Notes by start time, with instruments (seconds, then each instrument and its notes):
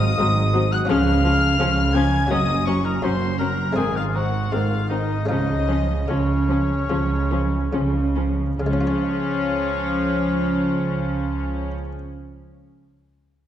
Already playing: double bass section G#1, harpsichord C4 D#4 F#4, oboe D#5, violin section D#6
0.18 double bass section G#1, cello section G#2, harpsichord G#2, viola section F#3, violin section C4
0.53 viola section F#3, violin section C4
0.72 oboe F#5, violin section F#6
0.85 double bass section C#2, cello section C#3, viola section F3, harpsichord C#4 F4, oboe F5
0.90 harpsichord C#3, violin section C#4 F6
1.24 viola section F3, violin section C#4
1.60 double bass section C#2, cello section C#3, harpsichord C#3, viola section F3, violin section C#4
1.95 viola section F3, violin section C#4 G#6, oboe G#5
2.27 harpsichord C#4 F#4, oboe D#5
2.31 double bass section F#1, harpsichord F#2, cello section F#2, viola section F#3, violin section C#4 D#6
2.66 viola section F#3, violin section C#4 C#6, oboe C#5
2.84 oboe A#4, violin section A#5
3.02 double bass section F#1, harpsichord F#2, cello section F#2, viola section F#3, violin section C#4 C6, oboe C5
3.39 viola section F#3, violin section C#4 A#5, oboe A#4
3.73 harpsichord G#3 C4 D#4, violin section C4, oboe G#4
3.77 double bass section G#1, harpsichord G#2, cello section G#2, viola section D#3, violin section G#5
3.96 oboe F4, violin section F5
4.14 viola section D#3, violin section C4 F#5, oboe F#4
4.52 double bass section G#1, cello section G#2, harpsichord G#2, viola section D#3, violin section C4 F5, oboe F4
4.89 viola section D#3, violin section C4 D#5, oboe D#4
5.26 cello section C#3, harpsichord G#3 C#4 F4, oboe D#4, violin section D#5
5.30 double bass section C#2, harpsichord C#3, viola section F3, violin section C#4
5.69 viola section F3, violin section C#4
6.07 double bass section C#2, cello section C#3, harpsichord C#3, viola section F3, oboe C#4, violin section C#4 C#5
6.49 viola section F3, violin section C#4
6.89 double bass section C#2, cello section C#3, harpsichord C#3, viola section F3, violin section C#4
7.31 viola section F3, violin section C#4
7.73 double bass section C#2, cello section C#3, harpsichord C#3, viola section F3, violin section C#4
8.16 viola section F3, violin section C#4
8.58 double bass section C#2, cello section C#3, harpsichord C#3, viola section F3, violin section C#4 C#5, oboe F4
8.66 harpsichord G#3
8.73 harpsichord C#4
8.80 harpsichord F4
8.87 harpsichord C#5